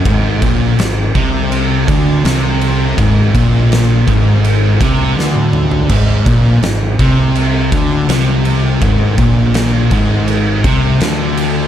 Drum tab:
CC |----------------|----------------|x---------------|----------------|
RD |x-x-x-x-x-x-x-x-|x-x-x-x-x-x-----|--x-x-x-x-x-x-x-|x-x-x-x-x-x-x-x-|
SD |----o-------o---|----o-------o---|----o-------o---|----o-------o---|
T1 |----------------|-------------o--|----------------|----------------|
T2 |----------------|--------------o-|----------------|----------------|
FT |----------------|---------------o|----------------|----------------|
BD |o-o---o---o-----|o-o---o---o-----|o-o---o---o-----|o-o---o---o-----|